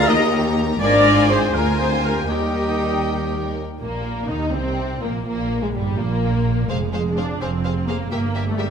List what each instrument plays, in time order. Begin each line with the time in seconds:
Already playing: violin section A#4 A#5, oboe F5
0.07 double bass section D#2, cello section D#2, french horn section D#4, violin section G4, flute section A#4, viola section D#5, oboe D#5
0.80 double bass section G#1, cello section G#2, french horn section D4, violin section F4 C5 G#5, flute section A#4, oboe D5, viola section D5
1.29 french horn section C4, flute section G#4, oboe C5, viola section C5
1.53 cello section D2, double bass section D2, french horn section A#3, flute section F4, violin section F4 A#4 G#5, viola section A#4, oboe A#4
1.78 french horn section C4, flute section G#4, viola section C5, oboe C5
2.04 french horn section A#3, flute section G4, viola section A#4, oboe A#4
2.29 cello section D#2, double bass section D#2, french horn section G3, flute section D#4, violin section D#4 A#4 G5, viola section G4, oboe G4
3.80 double bass section A#1, cello section A#2, violin section A#3, viola section A#3
4.29 double bass section D#2, cello section D#3, viola section D#4, violin section D#4
4.54 double bass section C2, cello section C3, viola section C4, violin section C4
5.02 double bass section A#1, cello section A#2, viola section A#3, violin section A#3
5.26 double bass section A#1, cello section A#2, viola section A#3, violin section A#3
5.62 cello section G#2, violin section G#3, viola section G#3
5.74 double bass section G1, cello section G2, viola section G3, violin section G3
5.98 double bass section A#1, cello section A#2, violin section A#3, viola section A#3
6.69 double bass section F1, cello section F2, viola section G#3, violin section G#4 C5 F5
6.93 violin section G#4 C5 F5
7.17 viola section D4, violin section G#4 C5 F5
7.40 double bass section F1, cello section F2, viola section C4, violin section G#4 C5 F5
7.64 violin section G#4 C5 F5
7.87 viola section A#3, violin section G#4 C5 F5
8.10 double bass section G1, cello section G2, viola section A#3, violin section G4 A#4 E5
8.35 violin section G4 A#4 E5
8.48 viola section A3
8.58 viola section G3, violin section G4 A#4 E5